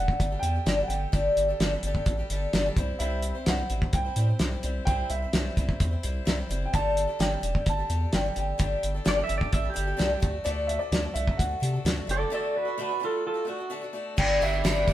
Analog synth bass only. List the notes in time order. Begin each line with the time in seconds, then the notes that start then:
Already playing: E1
0.20 G1
0.42 E2
0.66 G1
0.89 G1
1.13 G1
1.37 G1
1.60 G1
1.83 G1
2.06 A1
2.30 G1
2.53 G1
2.76 C2
3.00 C2
3.47 C2
3.70 A1
3.93 C2
4.16 A2
4.40 C2
4.64 C2
4.87 C2
5.10 C2
5.33 C2
5.57 C2
5.80 E2
6.04 C2
6.27 C2
6.50 F#1
6.74 G1
7.20 G1
7.42 E1
7.66 G1
7.90 E2
8.13 G1
8.36 G1
8.60 G1
8.83 G1
9.06 G1
9.29 G1
9.53 A1
9.77 G1
10.00 C2
10.23 D2
10.46 D2
10.92 D2
11.15 C2
11.39 D2
11.62 C3
11.85 D2
12.08 F#1
14.18 G1
14.41 G1
14.64 G1
14.88 G1